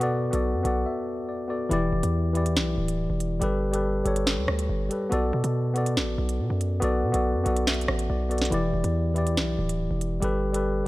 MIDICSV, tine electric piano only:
0, 0, Header, 1, 2, 480
1, 0, Start_track
1, 0, Key_signature, 2, "minor"
1, 0, Tempo, 425532
1, 14, Time_signature, 4, 2, 24, 8
1, 12269, End_track
2, 0, Start_track
2, 0, Title_t, "Tine electric piano"
2, 0, Program_c, 0, 4
2, 0, Control_c, 0, 64, 127
2, 0, Note_on_c, 0, 59, 123
2, 0, Note_on_c, 0, 66, 83
2, 0, Note_on_c, 0, 69, 80
2, 0, Note_on_c, 0, 74, 101
2, 5, Note_off_c, 0, 66, 0
2, 5, Note_on_c, 0, 66, 105
2, 20, Note_off_c, 0, 69, 0
2, 20, Note_on_c, 0, 69, 98
2, 35, Note_off_c, 0, 74, 0
2, 35, Note_on_c, 0, 74, 127
2, 248, Note_off_c, 0, 59, 0
2, 255, Note_off_c, 0, 66, 0
2, 263, Note_off_c, 0, 69, 0
2, 270, Note_off_c, 0, 74, 0
2, 349, Note_on_c, 0, 59, 88
2, 364, Note_on_c, 0, 66, 84
2, 378, Note_on_c, 0, 69, 81
2, 393, Note_on_c, 0, 74, 100
2, 607, Note_off_c, 0, 59, 0
2, 614, Note_off_c, 0, 66, 0
2, 621, Note_off_c, 0, 69, 0
2, 629, Note_off_c, 0, 74, 0
2, 711, Note_on_c, 0, 59, 86
2, 725, Note_on_c, 0, 66, 85
2, 733, Note_on_c, 0, 78, 78
2, 740, Note_on_c, 0, 69, 77
2, 755, Note_on_c, 0, 74, 96
2, 957, Note_off_c, 0, 78, 0
2, 972, Note_on_c, 0, 76, 73
2, 1377, Note_off_c, 0, 59, 0
2, 1384, Note_off_c, 0, 66, 0
2, 1392, Note_off_c, 0, 69, 0
2, 1399, Note_off_c, 0, 74, 0
2, 1419, Note_off_c, 0, 76, 0
2, 1451, Note_on_c, 0, 74, 76
2, 1671, Note_on_c, 0, 59, 77
2, 1676, Note_off_c, 0, 74, 0
2, 1685, Note_on_c, 0, 66, 71
2, 1693, Note_on_c, 0, 74, 93
2, 1700, Note_on_c, 0, 69, 72
2, 1846, Note_off_c, 0, 59, 0
2, 1853, Note_off_c, 0, 66, 0
2, 1861, Note_off_c, 0, 69, 0
2, 1868, Note_off_c, 0, 74, 0
2, 1910, Note_on_c, 0, 52, 124
2, 1925, Note_on_c, 0, 64, 107
2, 1939, Note_on_c, 0, 67, 111
2, 1946, Control_c, 0, 64, 0
2, 1954, Note_on_c, 0, 74, 127
2, 2143, Control_c, 0, 64, 127
2, 2413, Note_off_c, 0, 52, 0
2, 2421, Note_off_c, 0, 64, 0
2, 2428, Note_off_c, 0, 67, 0
2, 2435, Note_off_c, 0, 74, 0
2, 2631, Note_on_c, 0, 52, 91
2, 2645, Note_on_c, 0, 64, 84
2, 2660, Note_on_c, 0, 67, 81
2, 2675, Note_on_c, 0, 74, 103
2, 3297, Note_off_c, 0, 52, 0
2, 3304, Note_off_c, 0, 64, 0
2, 3312, Note_off_c, 0, 67, 0
2, 3319, Note_off_c, 0, 74, 0
2, 3832, Note_on_c, 0, 55, 123
2, 3846, Note_on_c, 0, 67, 114
2, 3861, Note_on_c, 0, 69, 104
2, 3870, Control_c, 0, 64, 0
2, 3875, Note_on_c, 0, 71, 127
2, 4040, Control_c, 0, 64, 127
2, 4088, Note_off_c, 0, 55, 0
2, 4096, Note_off_c, 0, 67, 0
2, 4103, Note_off_c, 0, 69, 0
2, 4110, Note_off_c, 0, 71, 0
2, 4190, Note_on_c, 0, 55, 97
2, 4205, Note_on_c, 0, 67, 83
2, 4220, Note_on_c, 0, 69, 83
2, 4235, Note_on_c, 0, 71, 95
2, 4448, Note_off_c, 0, 55, 0
2, 4455, Note_off_c, 0, 67, 0
2, 4462, Note_off_c, 0, 69, 0
2, 4470, Note_off_c, 0, 71, 0
2, 4551, Note_on_c, 0, 55, 86
2, 4566, Note_on_c, 0, 67, 83
2, 4580, Note_on_c, 0, 69, 84
2, 4595, Note_on_c, 0, 73, 106
2, 5218, Note_off_c, 0, 55, 0
2, 5225, Note_off_c, 0, 67, 0
2, 5232, Note_off_c, 0, 69, 0
2, 5239, Note_off_c, 0, 73, 0
2, 5512, Note_on_c, 0, 55, 86
2, 5526, Note_on_c, 0, 67, 67
2, 5542, Note_on_c, 0, 69, 74
2, 5556, Note_on_c, 0, 71, 91
2, 5687, Note_off_c, 0, 55, 0
2, 5694, Note_off_c, 0, 67, 0
2, 5702, Note_off_c, 0, 69, 0
2, 5709, Note_off_c, 0, 71, 0
2, 5747, Note_on_c, 0, 59, 113
2, 5762, Note_on_c, 0, 66, 110
2, 5777, Note_on_c, 0, 69, 114
2, 5787, Control_c, 0, 64, 0
2, 5791, Note_on_c, 0, 74, 127
2, 6016, Control_c, 0, 64, 127
2, 6252, Note_off_c, 0, 59, 0
2, 6259, Note_off_c, 0, 66, 0
2, 6266, Note_off_c, 0, 69, 0
2, 6274, Note_off_c, 0, 74, 0
2, 6471, Note_on_c, 0, 59, 91
2, 6487, Note_on_c, 0, 66, 87
2, 6501, Note_on_c, 0, 69, 83
2, 6516, Note_on_c, 0, 74, 102
2, 7137, Note_off_c, 0, 59, 0
2, 7145, Note_off_c, 0, 66, 0
2, 7152, Note_off_c, 0, 69, 0
2, 7160, Note_off_c, 0, 74, 0
2, 7670, Note_on_c, 0, 59, 127
2, 7686, Note_on_c, 0, 66, 107
2, 7700, Note_on_c, 0, 69, 105
2, 7715, Note_on_c, 0, 74, 127
2, 7928, Note_off_c, 0, 59, 0
2, 7935, Note_off_c, 0, 66, 0
2, 7943, Note_off_c, 0, 69, 0
2, 7950, Note_off_c, 0, 74, 0
2, 8031, Note_on_c, 0, 59, 90
2, 8045, Note_on_c, 0, 66, 84
2, 8060, Note_on_c, 0, 69, 82
2, 8075, Note_on_c, 0, 74, 99
2, 8288, Note_off_c, 0, 59, 0
2, 8295, Note_off_c, 0, 66, 0
2, 8303, Note_off_c, 0, 69, 0
2, 8310, Note_off_c, 0, 74, 0
2, 8392, Note_on_c, 0, 59, 89
2, 8406, Note_on_c, 0, 66, 87
2, 8414, Note_on_c, 0, 78, 78
2, 8421, Note_on_c, 0, 69, 78
2, 8436, Note_on_c, 0, 74, 97
2, 8637, Note_off_c, 0, 78, 0
2, 8655, Note_on_c, 0, 76, 75
2, 9058, Note_off_c, 0, 59, 0
2, 9065, Note_off_c, 0, 66, 0
2, 9072, Note_off_c, 0, 69, 0
2, 9080, Note_off_c, 0, 74, 0
2, 9101, Note_off_c, 0, 76, 0
2, 9132, Note_on_c, 0, 74, 79
2, 9353, Note_on_c, 0, 59, 81
2, 9356, Note_off_c, 0, 74, 0
2, 9368, Note_on_c, 0, 66, 73
2, 9376, Note_on_c, 0, 74, 94
2, 9383, Note_on_c, 0, 69, 74
2, 9527, Note_off_c, 0, 59, 0
2, 9535, Note_off_c, 0, 66, 0
2, 9542, Note_off_c, 0, 69, 0
2, 9550, Note_off_c, 0, 74, 0
2, 9591, Note_on_c, 0, 52, 127
2, 9605, Note_on_c, 0, 64, 106
2, 9620, Note_on_c, 0, 67, 107
2, 9627, Control_c, 0, 64, 0
2, 9635, Note_on_c, 0, 74, 127
2, 9834, Control_c, 0, 64, 127
2, 10093, Note_off_c, 0, 52, 0
2, 10101, Note_off_c, 0, 64, 0
2, 10108, Note_off_c, 0, 67, 0
2, 10115, Note_off_c, 0, 74, 0
2, 10311, Note_on_c, 0, 52, 88
2, 10326, Note_on_c, 0, 64, 83
2, 10340, Note_on_c, 0, 67, 86
2, 10355, Note_on_c, 0, 74, 104
2, 10977, Note_off_c, 0, 52, 0
2, 10985, Note_off_c, 0, 64, 0
2, 10992, Note_off_c, 0, 67, 0
2, 10999, Note_off_c, 0, 74, 0
2, 11510, Note_on_c, 0, 55, 122
2, 11525, Note_on_c, 0, 67, 112
2, 11539, Note_on_c, 0, 69, 107
2, 11548, Control_c, 0, 64, 0
2, 11554, Note_on_c, 0, 71, 127
2, 11739, Control_c, 0, 64, 127
2, 11767, Note_off_c, 0, 55, 0
2, 11775, Note_off_c, 0, 67, 0
2, 11782, Note_off_c, 0, 69, 0
2, 11790, Note_off_c, 0, 71, 0
2, 11869, Note_on_c, 0, 55, 98
2, 11884, Note_on_c, 0, 67, 82
2, 11899, Note_on_c, 0, 69, 85
2, 11914, Note_on_c, 0, 71, 100
2, 12127, Note_off_c, 0, 55, 0
2, 12135, Note_off_c, 0, 67, 0
2, 12142, Note_off_c, 0, 69, 0
2, 12149, Note_off_c, 0, 71, 0
2, 12230, Note_on_c, 0, 55, 89
2, 12269, Note_off_c, 0, 55, 0
2, 12269, End_track
0, 0, End_of_file